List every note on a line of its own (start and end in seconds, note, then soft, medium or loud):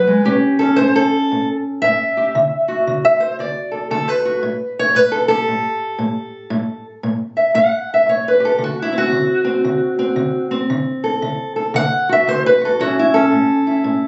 0.00 0.24 G#4 soft
0.00 0.26 B4 medium
0.00 0.25 E5 soft
0.07 0.26 G#3 medium
0.25 0.74 A2 medium
0.25 0.59 C#4 soft
0.25 0.61 G4 medium
0.59 2.33 C#4 soft
0.59 0.78 A4 medium
0.76 1.27 A2 medium
0.76 0.95 C5 medium
0.96 1.48 A4 medium
1.31 1.79 A2 medium
1.82 2.32 A2 medium
1.82 2.86 E5 loud
2.17 2.33 G4 soft
2.35 2.83 D3 medium
2.68 4.24 F#4 soft
2.87 3.35 D3 medium
3.05 3.22 E5 medium
3.20 3.38 C5 medium
3.39 3.87 D3 medium
3.39 3.72 D5 medium
3.71 3.91 A4 soft
3.91 4.39 D3 medium
3.91 4.08 A4 loud
4.08 4.77 B4 loud
4.25 4.41 F#4 soft
4.43 4.91 A2 medium
4.79 4.96 C#5 medium
4.95 5.43 A2 medium
4.95 5.13 B4 medium
5.12 5.27 A4 medium
5.28 6.50 G4 soft
5.28 6.85 A4 loud
5.48 5.96 A2 medium
5.99 6.47 A2 medium
6.50 6.99 A2 medium
7.03 7.52 A2 medium
7.37 7.55 E5 soft
7.54 8.03 A2 medium
7.54 7.90 F#5 medium
7.94 8.10 E5 medium
8.07 8.56 A2 medium
8.07 8.26 C#5 medium
8.28 8.44 B4 medium
8.40 8.57 G4 soft
8.45 8.61 A4 medium
8.58 9.08 D3 medium
8.64 8.79 F#4 medium
8.82 8.97 E4 medium
8.92 9.44 C4 soft
8.98 10.54 F#4 medium
9.12 9.61 D3 medium
9.45 9.97 C4 soft
9.65 10.13 D3 medium
9.99 10.50 C4 soft
10.16 10.65 D3 medium
10.51 12.08 C4 soft
10.70 11.18 D3 medium
11.04 11.56 A4 soft
11.22 11.71 D3 medium
11.56 11.75 A4 soft
11.74 12.23 D3 medium
11.74 12.10 F#5 loud
12.09 12.60 F#4 soft
12.09 12.29 E5 medium
12.27 12.76 D3 medium
12.27 12.45 C5 medium
12.46 12.63 B4 medium
12.61 12.78 F#4 medium
12.61 12.81 A4 medium
12.79 13.28 A2 medium
12.79 13.15 C#4 medium
12.79 12.99 E4 medium
12.79 12.98 F#4 loud
12.99 13.16 E4 medium
13.14 14.08 C#4 soft
13.14 14.08 A4 loud
13.31 13.81 A2 medium
13.67 14.08 E4 soft
13.84 14.08 A2 medium